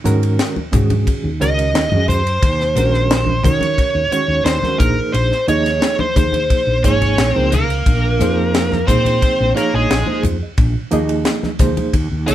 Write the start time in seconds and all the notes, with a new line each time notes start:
0.04 G#2 D#3 G#3 C#4 F#4 A#4, snare, hi-hat pedal, ride, high conga
0.23 ride
0.39 snare, ride
0.56 high conga
0.71 G#2 D#3 G#3 C#4 F#4 G#4, kick, hi-hat pedal, ride, low conga
0.90 ride, high conga
1.07 kick, ride
1.24 D#2
1.40 C#2 D#3 G#3 C#4 F#4 A#4 D#5, snare, hi-hat pedal, ride
1.59 ride
1.74 D#2, snare, ride
1.92 F#2 D#3 G#3 C#4 F#4 G#4, high conga
2.08 C5, hi-hat pedal, ride, low conga
2.27 C5, ride
2.43 D#2, kick, ride
2.61 snare
2.75 A#1 D#3 G#3 C#4 F#4 A#4, hi-hat pedal, ride, high conga
2.94 snare
3.11 snare, ride
3.26 high conga
3.43 D#3 G#3 C#4 F#4 A#4 C#5, kick, hi-hat pedal, ride, low conga
3.61 ride, high conga
3.78 kick, ride
3.95 D#2
4.11 D#3 G#3 C#4 F#4 C#5, muted fretless electric bass stroke, hi-hat pedal, ride
4.28 D#2
4.45 D#2 C5, snare, ride
4.63 D#3 G#3 C#4 F#4 A#4, muted fretless electric bass stroke, snare, high conga
4.78 A#1 F3 A#3 D#4 G#4 A#4 C5, kick, hi-hat pedal, ride, low conga
5.12 A#1 C5, ride
5.32 snare
5.47 D#2 F3 A#3 D#4 G#4 C#5 D#5, hi-hat pedal, ride
5.66 snare, ride
5.82 snare, ride
5.99 C5, high conga
6.15 D#2 F3 A#3 D#4 G#4 C5, kick, hi-hat pedal, ride
6.32 ride, high conga
6.50 kick, ride
6.67 A#1
6.83 G#1 F3 A#3 C#4 D#4 G#4 C#5, kick, hi-hat pedal, ride
7.02 ride, low conga
7.18 A#1, snare, ride
7.29 C4
7.34 C#2 F3 A#3 D#4 G#4 A#4 C5, high conga
7.52 A#3 A#4, hi-hat pedal, ride, high conga, low conga
7.70 ride
7.86 A#1, kick, ride
8.20 F2 F3 A#3 D#4 G#4 C5, snare, hi-hat pedal, ride, high conga
8.55 snare, ride
8.72 snare, high conga
8.87 A#2 F3 A#3 C4 D#4 G#4 C5, kick, hi-hat pedal, ride, low conga
9.05 ride, high conga
9.22 kick, ride
9.40 A#1
9.54 F3 A#3 D#4 G#4 A#4 C#5, muted fretless electric bass stroke, snare, hi-hat pedal, ride
9.74 A#1 G#3 G#4
9.91 A#1, snare, ride
10.06 F3 A#3 D#4 G#4 C5, high conga
10.23 F2, hi-hat pedal, ride, low conga
10.41 G#4 D#5
10.58 A#1, kick, ride
10.91 D#2 F3 A#3 D#4 G#4 D#5, hi-hat pedal, ride
11.09 ride
11.25 snare, ride
11.43 snare, high conga
11.59 D#2 F3 A#3 D#4 G#4 C5, kick, hi-hat pedal, ride, low conga
11.77 ride, high conga
11.93 D#2, kick, ride
12.12 D#2
12.27 C#2 F3 A#3 D#4 G#4 A#4 C#5, hi-hat pedal, ride